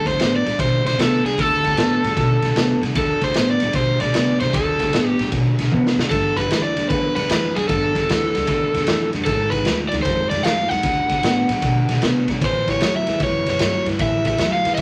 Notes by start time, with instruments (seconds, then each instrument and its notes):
Already playing: upright bass D2
0.05 clean electric guitar D3 A3, overdriven electric guitar C5, kick, snare, ride
0.18 upright bass A2, clean electric guitar D3 B3, snare, ride
0.36 overdriven electric guitar D5
0.44 upright bass A2, clean electric guitar D3 A3, snare, ride
0.58 upright bass B2, clean electric guitar D3 A3, overdriven electric guitar C5, kick, snare, ride
0.84 upright bass B2, clean electric guitar D3 A3, overdriven electric guitar C5, snare, ride
0.97 upright bass C3, clean electric guitar D3 B3, overdriven electric guitar A4, snare, ride
1.23 upright bass C3, clean electric guitar D3 A3, overdriven electric guitar G#4, ride
1.27 snare
1.38 upright bass D2, clean electric guitar D3 A3, overdriven electric guitar A4, kick, snare, ride
1.63 clean electric guitar D3 A3, kick, snare, ride
1.76 upright bass A2, clean electric guitar D3 B3, snare, ride
2.02 upright bass A2, clean electric guitar D3 A3, snare, ride
2.16 upright bass B2, clean electric guitar D3 A3, kick, snare, ride
2.42 upright bass B2, clean electric guitar D3 A3, snare, ride
2.55 upright bass C3, clean electric guitar D3 B3, snare, ride
2.81 upright bass C3, clean electric guitar D3 A3, snare, ride
2.95 upright bass D2, clean electric guitar D3 A3, overdriven electric guitar A4, kick, snare, ride
3.21 clean electric guitar D3 A3, overdriven electric guitar C5, kick, snare, ride
3.34 upright bass A2, clean electric guitar D3 B3, snare, ride
3.51 overdriven electric guitar D5
3.60 upright bass A2, clean electric guitar D3 A3, snare, ride
3.73 upright bass B2, clean electric guitar D3 A3, overdriven electric guitar C5, kick, snare, ride
4.00 upright bass B2, clean electric guitar D3 A3, overdriven electric guitar D5, snare, ride
4.14 upright bass C3, clean electric guitar D3 B3, snare, ride
4.40 upright bass C3, clean electric guitar D3 A3, overdriven electric guitar C5, snare, ride
4.53 upright bass D2, clean electric guitar D3 A3, overdriven electric guitar A4, kick, snare, ride
4.79 clean electric guitar D3 A3, kick, snare, ride
4.93 upright bass A2, clean electric guitar D3 B3, snare, ride
5.08 overdriven electric guitar G4
5.19 upright bass A2, clean electric guitar D3 A3, snare, ride
5.32 upright bass B2, clean electric guitar D3 A3, kick, snare, ride
5.59 upright bass B2, clean electric guitar D3 A3, snare, ride
5.72 upright bass C3, clean electric guitar D3 B3, high tom
5.87 snare
5.98 upright bass C3, clean electric guitar D3 A3, snare
6.11 upright bass G1, clean electric guitar G2 D3, overdriven electric guitar A4, kick, snare, ride
6.37 clean electric guitar G2 D3, overdriven electric guitar B4, kick, snare, ride
6.50 upright bass D2, clean electric guitar G2 E3, snare, ride
6.63 overdriven electric guitar D5
6.76 upright bass D2, clean electric guitar G2 D3, snare, ride
6.89 upright bass E2, clean electric guitar G2 D3, overdriven electric guitar B4, kick, snare, ride
7.16 upright bass E2, clean electric guitar G2 D3, overdriven electric guitar B4, snare, ride
7.29 upright bass F2, clean electric guitar G2 E3, snare, ride
7.56 upright bass F2, clean electric guitar G2 D3, overdriven electric guitar G#4, snare, ride
7.68 upright bass G1, clean electric guitar G2 D3, overdriven electric guitar A4, kick, snare, ride
7.95 clean electric guitar G2 D3, kick, snare, ride
8.08 upright bass D2, clean electric guitar G2 E3, snare, ride
8.35 upright bass D2, clean electric guitar G2 D3, snare, ride
8.47 upright bass E2, clean electric guitar G2 D3, kick, snare, ride
8.74 upright bass E2, clean electric guitar G2 D3, snare, ride
8.87 upright bass F2, clean electric guitar G2 E3, snare, ride
9.13 upright bass F2, clean electric guitar G2 D3, snare, ride
9.25 upright bass G#1, clean electric guitar G#2 D#3, overdriven electric guitar A4, kick, snare, ride
9.50 clean electric guitar G#2, overdriven electric guitar B4, kick, snare, ride
9.54 clean electric guitar D#3
9.65 upright bass D2, clean electric guitar G#2 F3, snare, ride
9.89 upright bass D2, clean electric guitar G#2, overdriven electric guitar D5, ride
9.93 clean electric guitar D#3, snare
10.02 upright bass F2, clean electric guitar G#2 D#3, overdriven electric guitar C5, kick, ride
10.07 snare
10.30 upright bass F2, clean electric guitar G#2 D#3, overdriven electric guitar D5, snare, ride
10.43 upright bass F2, clean electric guitar G#2 F3, overdriven electric guitar F5, snare, ride
10.69 upright bass F2, clean electric guitar G#2 D#3, overdriven electric guitar F#5, snare, ride
10.83 upright bass D2, clean electric guitar D3 A3, kick, snare, ride
11.09 clean electric guitar D3 A3, kick, snare, ride
11.23 upright bass A2, clean electric guitar D3 B3, snare, ride
11.49 upright bass A2, clean electric guitar D3 A3, snare, ride
11.62 upright bass B2, clean electric guitar D3 A3, kick, snare, ride
11.89 upright bass B2, clean electric guitar D3 A3, snare, ride
12.02 upright bass C3, clean electric guitar D3 B3, snare, ride
12.28 upright bass C3, clean electric guitar D3 A3, kick, snare, ride
12.41 upright bass A1, clean electric guitar A2 E3, kick, snare, ride
12.45 overdriven electric guitar C5
12.68 clean electric guitar A2 E3, overdriven electric guitar C#5, kick, snare, ride
12.80 upright bass E2, clean electric guitar A2 F#3, snare, ride
12.96 overdriven electric guitar E5
13.07 upright bass E2, clean electric guitar A2 E3, snare, ride
13.20 upright bass F#2, clean electric guitar A2 E3, overdriven electric guitar C#5, kick, snare, ride
13.46 upright bass F#2, clean electric guitar A2 E3, overdriven electric guitar C#5, snare, ride
13.59 upright bass G2, clean electric guitar A2 F#3, snare, ride
13.86 upright bass G2, clean electric guitar A2 E3, snare, ride
13.99 upright bass A1, clean electric guitar A2 E3, overdriven electric guitar E5, kick, snare, ride
14.25 clean electric guitar A2 E3, overdriven electric guitar E5, kick, snare, ride
14.38 upright bass E2, clean electric guitar A2 F#3, snare, ride
14.53 overdriven electric guitar F5
14.64 upright bass E2, clean electric guitar A2 E3, snare, ride
14.75 clean electric guitar A2, overdriven electric guitar D#5, kick, ride